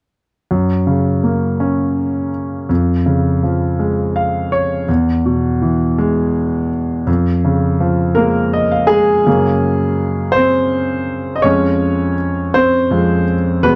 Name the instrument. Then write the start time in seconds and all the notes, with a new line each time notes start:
grand piano
0.51 F#2
0.87 C#3
1.23 A#3
1.60 C#4
2.69 F2
3.06 C#3
3.43 F3
3.79 G#3
4.16 F5
4.52 C#5
4.89 E2
5.26 B2
5.62 E3
5.98 G#3
7.07 F2
7.45 C#3
7.80 F3
8.15 G#3 A#3 A#4
8.53 D#5
8.71 F5
8.87 G#3 G#4 G#5
9.26 F#2 C#3 A#3
10.32 C5
10.36 C4
11.36 D#5
11.42 F2 F3 G#3 C#4 C#5
12.54 C4 C5
12.91 F2 F3 G#3
13.63 E2 B2 G#3 B3 B4